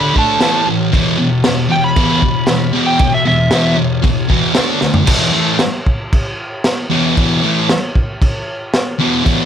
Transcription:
Already playing: distorted electric guitar D3 A3 D4, electric slide guitar B5
0.14 distorted electric guitar D3 A3 D4, kick
0.19 electric slide guitar A5
0.40 distorted electric guitar A2 E3 A3, snare, crash
0.67 distorted electric guitar A2 E3
0.92 distorted electric guitar E2 B2 E3, kick, crash
1.18 distorted electric guitar E2 B2
1.44 distorted electric guitar E2 B2, snare, crash
1.69 distorted electric guitar E2 B2, electric slide guitar G5
1.84 electric slide guitar B5
1.96 distorted electric guitar E2 B2 E3, kick, crash
2.22 distorted electric guitar E2 B2, kick
2.47 distorted electric guitar E2 B2, snare, crash
2.73 distorted electric guitar E2 B2 E3
2.87 electric slide guitar G5
2.99 distorted electric guitar E2 B2, kick, crash
3.14 electric slide guitar E5
3.26 distorted electric guitar E2 B2, electric slide guitar E5
3.51 distorted electric guitar E2 B2 E3, snare, crash
3.76 distorted electric guitar E2 B2
4.02 distorted electric guitar E2 B2, kick, crash
4.29 distorted electric guitar E2 B2 E3, kick
4.53 distorted electric guitar D3 A3 D4, snare, crash
4.80 distorted electric guitar D3 A3, snare
4.94 floor tom
5.05 distorted electric guitar E2 B2 E3, kick, crash
5.33 distorted electric guitar A2 E3 A3
5.59 snare, crash
5.86 kick
6.13 kick, crash
6.64 snare, crash
6.90 distorted electric guitar E2 B2 E3
7.16 distorted electric guitar E2 B2 E3, kick, crash
7.43 distorted electric guitar A2 E3 A3
7.69 snare, crash
7.95 kick
8.22 kick, crash
8.74 snare, crash
8.99 distorted electric guitar E2 B2 E3
9.23 distorted electric guitar E2 B2 E3, kick, crash

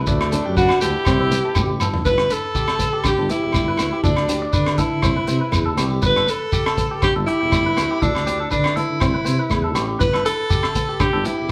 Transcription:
Already playing: clean electric guitar B4
0.07 tuba D2, trumpet A3, alto saxophone D4, nylon-string guitar E4, kick, shekere
0.21 cross-stick, low agogo
0.32 nylon-string guitar D4, clean electric guitar A4, closed hi-hat, shekere
0.45 tuba F#2, clean electric guitar G4
0.57 trumpet D4, alto saxophone F#4, clean electric guitar B4, kick, shekere
0.69 cross-stick, low agogo
0.81 tuba D2, nylon-string guitar B3, trumpet E4, alto saxophone G4, clean electric guitar A4, closed hi-hat, shekere
1.05 tuba C2, nylon-string guitar C4, clean electric guitar C5, kick, cross-stick, low agogo, shekere
1.20 nylon-string guitar C4, clean electric guitar E5
1.31 nylon-string guitar B3, closed hi-hat, shekere
1.45 clean electric guitar A4
1.55 tuba A1, nylon-string guitar A3, clean electric guitar G4, kick, high tom, low agogo, shekere
1.80 tuba G1, nylon-string guitar B3, clean electric guitar A4, mid tom, low agogo, shekere
1.94 floor tom
2.05 tuba G1, nylon-string guitar E4, alto saxophone B4, clean electric guitar B4, kick, shekere
2.18 muted clean electric guitar stroke, cross-stick, low agogo
2.30 nylon-string guitar D4, alto saxophone A4, clean electric guitar B4, closed hi-hat, shekere
2.55 clean electric guitar G4, kick, shekere
2.68 clean electric guitar A4, cross-stick, low agogo
2.79 nylon-string guitar B3, kick, closed hi-hat, shekere
2.93 clean electric guitar G4
3.04 nylon-string guitar D4, alto saxophone G4, kick, cross-stick, low agogo, shekere
3.18 tuba G1, nylon-string guitar D4, clean electric guitar A4
3.29 nylon-string guitar B3, alto saxophone E4, clean electric guitar G4, closed hi-hat, shekere
3.42 tuba E1, clean electric guitar G4
3.52 tuba G1, nylon-string guitar A3, kick, cross-stick, low agogo, shekere
3.68 clean electric guitar B4
3.77 tuba D2, nylon-string guitar B3, cross-stick, closed hi-hat, low agogo, shekere
3.93 clean electric guitar G4
4.03 tuba D2, alto saxophone D4, nylon-string guitar E4, clean electric guitar A4, kick, shekere
4.16 tuba D2, cross-stick, low agogo
4.29 nylon-string guitar D4, clean electric guitar G4, closed hi-hat, shekere
4.42 clean electric guitar D5
4.53 tuba D3, alto saxophone D4, clean electric guitar B4, kick, shekere
4.66 cross-stick, low agogo
4.78 nylon-string guitar B3, alto saxophone E4, clean electric guitar A4, kick, closed hi-hat, shekere
4.91 tuba D3
5.02 tuba C2, nylon-string guitar C4, clean electric guitar C5, kick, cross-stick, low agogo, shekere
5.16 nylon-string guitar E4, clean electric guitar B4
5.27 tuba C3, nylon-string guitar B3, clean electric guitar C5, closed hi-hat, shekere
5.41 clean electric guitar B4
5.52 tuba E2, muted nylon-string guitar stroke, kick, cross-stick, low agogo, shekere
5.66 clean electric guitar A4
5.77 tuba C2, nylon-string guitar B3, clean electric guitar G4, cross-stick, closed hi-hat, low agogo, shekere
5.91 clean electric guitar G4
6.02 tuba G1, clean electric guitar B4, alto saxophone B4, muted nylon-string guitar stroke, kick, shekere
6.16 clean electric guitar A4, cross-stick, low agogo
6.27 alto saxophone A4, clean electric guitar B4, muted nylon-string guitar stroke, closed hi-hat, shekere
6.52 clean electric guitar G4, kick, shekere
6.66 clean electric guitar A4, cross-stick, low agogo
6.77 nylon-string guitar B3, kick, closed hi-hat, shekere
6.91 clean electric guitar G4
7.02 nylon-string guitar D4, alto saxophone G4, kick, cross-stick, low agogo, shekere
7.16 tuba G1, nylon-string guitar D4, clean electric guitar A4
7.26 alto saxophone E4, clean electric guitar G4, closed hi-hat
7.41 tuba E1, clean electric guitar G4
7.52 tuba G1, nylon-string guitar A3, kick, cross-stick, low agogo, shekere
7.66 clean electric guitar B4
7.76 tuba D2, nylon-string guitar B3, cross-stick, closed hi-hat, low agogo, shekere
7.91 clean electric guitar G4
8.02 tuba D2, alto saxophone D4, nylon-string guitar E4, clean electric guitar A4, kick, shekere
8.15 tuba D2, cross-stick, low agogo
8.27 nylon-string guitar D4, clean electric guitar G4, closed hi-hat, shekere
8.40 clean electric guitar A4
8.51 tuba D3, alto saxophone D4, clean electric guitar B4, kick, shekere
8.64 cross-stick, low agogo
8.76 nylon-string guitar B3, alto saxophone E4, clean electric guitar A4, closed hi-hat
8.90 tuba D3
9.00 tuba C2, nylon-string guitar C4, clean electric guitar C5, kick, cross-stick, low agogo, shekere
9.14 nylon-string guitar C4, clean electric guitar B4
9.25 tuba C3, nylon-string guitar B3, clean electric guitar C5, closed hi-hat, shekere
9.39 clean electric guitar B4
9.50 tuba E2, nylon-string guitar A3, kick, cross-stick, low agogo, shekere
9.64 clean electric guitar A4
9.75 tuba A1, nylon-string guitar B3, clean electric guitar G4, cross-stick, closed hi-hat, low agogo, shekere
9.88 clean electric guitar G4
9.99 tuba G1, nylon-string guitar E4, clean electric guitar B4, alto saxophone B4, kick, shekere
10.13 clean electric guitar A4, cross-stick, low agogo
10.25 nylon-string guitar D4, alto saxophone A4, clean electric guitar B4, closed hi-hat, shekere
10.50 clean electric guitar G4, kick, shekere
10.63 clean electric guitar A4, cross-stick, low agogo
10.75 nylon-string guitar B3, kick, closed hi-hat, shekere
10.89 clean electric guitar G4
11.00 nylon-string guitar D4, alto saxophone G4, kick, cross-stick, low agogo, shekere
11.13 tuba G1, nylon-string guitar D4, clean electric guitar A4
11.25 nylon-string guitar B3, alto saxophone E4, clean electric guitar G4, closed hi-hat, shekere
11.38 tuba E1, clean electric guitar G4

